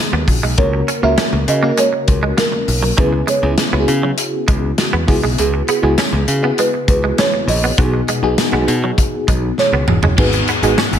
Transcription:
Already playing: C#3 B3 D#4 F#4 G#4
0.13 D#2 B3
0.28 A#1, muted clean electric guitar stroke, kick, open hi-hat
0.43 B1 G#3
0.58 C#2 C#3 A#3 C#4 F#4 A#4 C#5, kick, closed hi-hat
0.73 muted clean electric guitar stroke
0.88 C#4, closed hi-hat
1.02 C#2 A#3 C#4 F#4 A#4 E5
1.18 C#4, snare, closed hi-hat
1.33 C#2, muted clean electric guitar stroke
1.48 C#3 D#5, closed hi-hat
1.63 A#3 C#4 F#4 A#4
1.78 G#3 C#5, closed hi-hat
1.93 muted clean electric guitar stroke
2.08 C#2, kick, closed hi-hat
2.23 G#3
2.37 A#3 A#4, snare, closed hi-hat
2.52 muted clean electric guitar stroke
2.68 B1, open hi-hat
2.83 F#3
2.98 C#2 C#3 F#3 B3 C#4 E4 G#4 B4, kick, closed hi-hat
3.13 muted clean electric guitar stroke
3.27 G#3 C#5, closed hi-hat
3.42 C#2 B3 C#4 E4 G#4
3.58 snare, closed hi-hat
3.72 C#2 B3 C#4 E4 F#4
3.80 G#4
3.88 C#3, muted clean electric guitar stroke, closed hi-hat
4.03 F#3
4.18 closed hi-hat
4.48 C#2 G#3, kick, closed hi-hat
4.78 F#4, snare, closed hi-hat
4.93 E2 B3
5.07 C#2 C#3 B3 E4 F#4 G#4, muted clean electric guitar stroke, kick, open hi-hat
5.23 B1 G#3
5.38 C#2 G#4, closed hi-hat
5.54 muted clean electric guitar stroke
5.68 B3 G#4, closed hi-hat
5.82 C#2 G#3 B3 E4 F#4 G#4
5.98 C#4, snare, closed hi-hat, tambourine
6.13 C#2, muted clean electric guitar stroke
6.28 C#3, closed hi-hat
6.43 B3 E4 F#4 G#4
6.58 G#3 B4, closed hi-hat
6.74 muted clean electric guitar stroke
6.88 C#2 B4, kick, closed hi-hat
7.04 G#3
7.18 C#4 C#5, snare, closed hi-hat, tambourine
7.34 muted clean electric guitar stroke
7.47 A#1 D#5, open hi-hat
7.64 B3
7.78 B1 B2 B3 D#4 F#4 G#4, kick, closed hi-hat
7.94 muted clean electric guitar stroke
8.08 G#3, closed hi-hat
8.23 B1 B3 D#4 F#4 G#4
8.38 snare, closed hi-hat, tambourine
8.52 B1 B3 D#4 F#4 G#4
8.68 B2, muted clean electric guitar stroke, closed hi-hat
8.84 F#3
8.98 kick, closed hi-hat
9.28 B1 G#3, kick, closed hi-hat
9.58 C#5, snare
9.73 C#2 B3
9.87 E1, muted clean electric guitar stroke, mid tom
10.02 F#1 G#3, floor tom
10.17 G#1 G#2 D#3 G#3 B3 D#4 F#4 G#4 B4, kick, crash
10.33 muted clean electric guitar stroke, closed hi-hat
10.48 D#3 G#3 B3, closed hi-hat
10.62 G#1 G#3 B3 D#4 F#4 G#4, closed hi-hat
10.78 C#4, snare, tambourine
10.93 G#1, muted clean electric guitar stroke, closed hi-hat

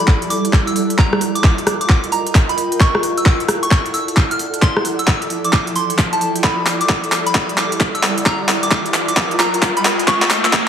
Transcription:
Already playing: G3 E4 A4 D5
0.00 B5
0.08 kick, clap
0.22 closed hi-hat
0.30 D6, open hi-hat
0.45 closed hi-hat
0.53 kick, clap
0.67 E6, closed hi-hat
0.76 open hi-hat
0.90 closed hi-hat
0.98 F4 A#5, kick, clap
1.13 cross-stick
1.21 D#5, open hi-hat
1.35 A#4 D6, closed hi-hat
1.44 kick, clap
1.58 closed hi-hat
1.67 cross-stick, open hi-hat
1.81 D6, closed hi-hat
1.89 kick, clap
2.04 closed hi-hat
2.12 A#5, open hi-hat
2.27 closed hi-hat
2.35 kick, clap, open hi-hat
2.49 B5, closed hi-hat
2.58 E4, open hi-hat
2.66 A4
2.72 closed hi-hat
2.80 C#6, kick, clap
2.95 cross-stick
3.03 open hi-hat
3.18 E6, closed hi-hat
3.26 kick, clap
3.40 D5, closed hi-hat
3.48 cross-stick, open hi-hat
3.63 C#6, closed hi-hat
3.71 kick, clap
3.86 closed hi-hat
3.94 E6, open hi-hat
4.08 closed hi-hat
4.17 kick, clap
4.31 F6, closed hi-hat
4.39 F3, open hi-hat
4.54 closed hi-hat
4.62 C6, kick, clap
4.77 cross-stick
4.85 open hi-hat
4.99 E6, closed hi-hat
5.07 kick, clap
5.14 G5
5.22 closed hi-hat
5.30 open hi-hat
5.45 D6, closed hi-hat
5.53 kick, clap
5.67 closed hi-hat
5.76 C6, open hi-hat
5.90 closed hi-hat
5.98 kick, clap, open hi-hat
6.13 A5, closed hi-hat
6.21 open hi-hat
6.36 closed hi-hat
6.44 G3 B5, kick, clap, riser
6.66 clap, open hi-hat
6.81 D6, closed hi-hat
6.89 kick, clap
7.04 closed hi-hat
7.12 clap, open hi-hat
7.26 B5, closed hi-hat
7.35 kick, clap
7.49 closed hi-hat
7.58 D6, clap, open hi-hat
7.72 closed hi-hat
7.80 kick, clap
7.95 E6, closed hi-hat
8.03 clap, open hi-hat
8.18 closed hi-hat
8.26 F4 A#5, kick, clap
8.49 clap, open hi-hat
8.57 A#4
8.63 D6, closed hi-hat
8.71 kick, clap
8.86 closed hi-hat
8.94 clap, open hi-hat
9.08 D6, closed hi-hat
9.17 kick, clap
9.31 closed hi-hat
9.40 A#5, clap, open hi-hat
9.54 closed hi-hat
9.62 kick, clap, open hi-hat
9.77 B5, closed hi-hat
9.85 E4, clap, open hi-hat
9.99 closed hi-hat
10.08 C#6, kick, clap
10.22 clap
10.30 A4 D5, clap, open hi-hat
10.45 E6, clap, closed hi-hat
10.53 kick, clap

